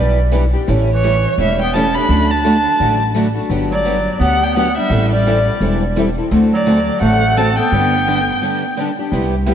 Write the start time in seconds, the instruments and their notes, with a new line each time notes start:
Already playing: upright bass B1, steel-string acoustic guitar E3, clarinet G3, violin D5
0.00 steel-string acoustic guitar G3 B3 D4 E4 G4 B4
0.32 steel-string acoustic guitar E3 G3 B3 D4 E4 G4 B4
0.53 steel-string acoustic guitar B3 D4 G4
0.68 upright bass A1, steel-string acoustic guitar C#3 E3 G3 A3 C#4 E4 G4 A4
0.92 clarinet E3, violin C#5
1.03 steel-string acoustic guitar C#3 E3 G3 A3 C#4 E4 G4 A4
1.38 upright bass E1, steel-string acoustic guitar C#3 E3 G3 A3 C#4 E4 G4 A4, violin E5
1.43 clarinet G3
1.61 clarinet B3, violin G5
1.74 steel-string acoustic guitar C#3 E3 G3 A3 C#4 E4 G4 A4, clarinet C#4, violin A5
1.95 steel-string acoustic guitar A3 C#4 G4, clarinet D4, violin B5
2.09 upright bass D2, steel-string acoustic guitar D3 F#3 A3 D4 F#4 A4
2.31 clarinet D4, violin A5
2.44 steel-string acoustic guitar D3 F#3 A3 D4 F#4 A4
2.80 upright bass A1, steel-string acoustic guitar D3 F#3 A3 D4 F#4 A4
3.14 steel-string acoustic guitar D3 F#3 A3 D4 F#4 A4
3.35 steel-string acoustic guitar A3 D4 F#4
3.50 upright bass G1, steel-string acoustic guitar D3 F#3 B3 D4 G4
3.71 clarinet F#3, violin D5
3.85 steel-string acoustic guitar D3 F#3 B3 D4 G4
4.19 upright bass D2, steel-string acoustic guitar D3 F#3 B3 D4 G4, clarinet B3, violin F#5
4.42 clarinet B3, violin G5
4.56 steel-string acoustic guitar D3 F#3 B3 D4 G4, clarinet B3, violin F#5
4.77 clarinet G3, steel-string acoustic guitar B3 D4 G4, violin E5
4.90 upright bass A1, steel-string acoustic guitar E3 G3 C4 E4 A4
5.13 clarinet G3, violin D5
5.26 steel-string acoustic guitar E3 G3 C4 E4 A4
5.61 upright bass E1, steel-string acoustic guitar E3 G3 C4 E4 A4
5.97 steel-string acoustic guitar E3 G3 C4 E4 A4
6.18 steel-string acoustic guitar C4 E4 A4
6.31 upright bass D2, steel-string acoustic guitar D3 A3 C4 F#4 A4
6.53 clarinet F#3, violin D5
6.66 steel-string acoustic guitar D3 A3 C4 F#4 A4
7.00 upright bass A1, steel-string acoustic guitar D3 A3 C4 F#4 A4, clarinet A3, violin F#5
7.36 steel-string acoustic guitar D3 A3 C4 F#4 A4, clarinet C4, violin A5
7.57 clarinet B3, steel-string acoustic guitar C4 F#4 A4, violin G5
7.72 upright bass G1, steel-string acoustic guitar D3 G3 B3 D4 G4
8.08 steel-string acoustic guitar D3 G3 B3 D4 G4
8.42 steel-string acoustic guitar D3 G3 B3 D4 G4
8.79 steel-string acoustic guitar D3 G3 B3 D4 G4
8.99 steel-string acoustic guitar B3 D4 G4
9.12 upright bass C2, steel-string acoustic guitar C3 G3 B3 E4 G4
9.47 steel-string acoustic guitar C3 G3 B3 E4 G4